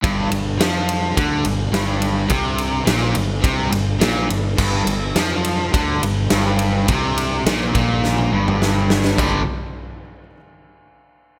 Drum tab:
CC |----------------|----------------|x---------------|----------------|
RD |x-x-x-x-x-x-x-x-|x-x-x-x-x-x-x-x-|--x-x-x-x-x-x-x-|x-x-x-x---------|
SD |----o-------o---|----o-------o---|----o-------o---|----o---o---o-oo|
T1 |----------------|----------------|----------------|---------o------|
T2 |----------------|----------------|----------------|-----------o----|
FT |----------------|----------------|----------------|----------------|
BD |o-------o-------|o-------o-------|o-------o-------|o-----o---------|

CC |x---------------|
RD |----------------|
SD |----------------|
T1 |----------------|
T2 |----------------|
FT |o---------------|
BD |o---------------|